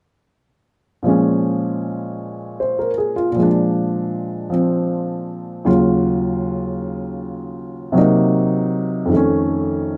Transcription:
1.03 3.30 A#2 soft
1.03 3.34 F3 soft
1.03 3.37 G#3 soft
1.08 3.38 C#4 soft
2.60 2.90 C5 soft
2.79 3.15 A#4 soft
2.98 3.28 G#4 soft
3.16 3.46 F4 soft
3.31 5.64 A#2 soft
3.36 4.48 F3 soft
3.36 5.67 G#3 soft
3.43 5.69 D4 soft
4.50 5.65 F3 soft
4.50 5.67 C4 soft
5.65 7.95 D#2 soft
5.65 7.95 C#3 soft
5.65 7.92 F#3 soft
5.65 7.96 F4 soft
7.92 9.10 C3 soft
7.92 9.11 F#3 soft
7.92 9.12 A#3 soft
7.98 9.13 D#4 medium
9.06 9.97 F2 soft
9.06 9.97 D#3 soft
9.13 9.97 A3 soft
9.13 9.97 C#4 soft

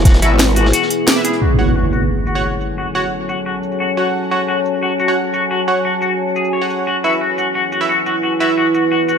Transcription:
0.00 0.21 E1 loud
0.00 1.38 B3 medium
0.00 1.38 E4 medium
0.00 1.38 G#4 medium
0.05 0.14 F#4 loud
0.05 kick loud
0.05 snare loud
0.05 closed hi-hat medium
0.14 snare loud
0.14 closed hi-hat medium
0.22 0.72 G#1 loud
0.22 0.34 E4 medium
0.22 0.31 F#4 loud
0.22 0.34 B4 medium
0.22 0.34 E5 loud
0.22 closed hi-hat medium
0.39 snare loud
0.39 closed hi-hat medium
0.56 0.65 F#4 loud
0.56 closed hi-hat medium
0.65 snare medium
0.73 0.82 F#4 loud
0.73 closed hi-hat loud
0.73 closed hi-hat medium
0.82 snare soft
0.90 closed hi-hat medium
1.07 1.16 D5 medium
1.07 snare loud
1.07 closed hi-hat loud
1.07 closed hi-hat medium
1.16 1.41 E4 medium
1.16 1.41 B4 medium
1.16 1.41 E5 medium
1.16 snare soft
1.25 1.33 G#4 medium
1.25 closed hi-hat medium
1.33 closed hi-hat soft
1.42 6.83 F#4 medium
1.42 1.50 F#4 medium
1.42 6.83 C#5 medium
1.42 9.18 G#5 medium
1.42 6.83 A5 medium
1.42 impact medium
1.59 1.70 F#4 medium
1.59 1.70 C#5 medium
1.59 1.70 F#5 medium
1.59 shaker medium
1.67 shaker soft
1.76 1.84 F#4 loud
1.93 2.01 F#4 loud
1.93 shaker medium
2.27 2.35 F#4 medium
2.27 shaker medium
2.35 2.42 F#4 medium
2.35 2.42 C#5 medium
2.35 2.42 F#5 loud
2.44 2.52 F#4 medium
2.61 shaker medium
2.78 2.87 F#4 medium
2.95 3.06 F#4 medium
2.95 3.04 F#4 medium
2.95 3.06 C#5 medium
2.95 3.06 F#5 loud
2.95 shaker medium
3.03 shaker soft
3.29 3.38 F#4 loud
3.29 shaker medium
3.46 3.55 F#4 loud
3.63 shaker medium
3.72 shaker soft
3.80 3.89 F#4 medium
3.97 4.06 F#4 loud
3.97 4.29 F#4 medium
3.97 4.29 C#5 medium
3.97 4.29 F#5 medium
3.97 shaker medium
4.31 4.43 F#4 medium
4.31 4.40 F#4 medium
4.31 4.43 C#5 medium
4.31 4.43 F#5 medium
4.31 shaker medium
4.40 shaker soft
4.48 4.57 F#4 loud
4.66 shaker medium
4.83 4.91 F#4 loud
5.00 5.08 F#4 loud
5.00 shaker medium
5.08 5.15 F#4 medium
5.08 5.15 C#5 medium
5.08 5.15 F#5 loud
5.08 shaker soft
5.34 5.42 F#4 medium
5.34 shaker medium
5.51 5.59 F#4 loud
5.68 5.79 F#4 medium
5.68 5.79 C#5 medium
5.68 5.79 F#5 medium
5.68 shaker medium
5.76 shaker soft
5.85 5.93 F#4 medium
6.02 6.10 F#4 medium
6.02 shaker medium
6.36 6.49 G#4 medium
6.36 shaker medium
6.44 shaker soft
6.53 6.66 C#5 medium
6.61 6.86 F#4 medium
6.61 6.86 C#5 medium
6.61 6.86 F#5 medium
6.70 shaker medium
6.87 9.18 E4 medium
6.87 6.96 F#4 loud
6.87 9.18 B4 medium
6.87 9.18 F#5 medium
7.04 7.15 E4 medium
7.04 7.13 F#4 medium
7.04 7.15 B4 medium
7.04 7.15 E5 medium
7.04 shaker medium
7.13 shaker soft
7.21 7.30 F#4 medium
7.38 7.47 F#4 medium
7.38 shaker medium
7.55 7.64 F#4 loud
7.72 7.81 F#4 medium
7.72 shaker medium
7.81 7.88 E4 medium
7.81 7.88 B4 medium
7.81 7.88 E5 loud
7.81 shaker soft
7.89 7.98 F#4 medium
8.06 8.15 F#4 loud
8.06 shaker medium
8.23 8.32 F#4 medium
8.40 8.52 E4 medium
8.40 8.49 F#4 loud
8.40 8.52 B4 medium
8.40 8.52 E5 loud
8.40 shaker medium
8.49 shaker soft
8.58 8.66 F#4 loud
8.75 8.83 F#4 medium
8.75 shaker medium
8.92 9.00 F#4 loud
9.09 9.17 F#4 loud
9.09 shaker medium

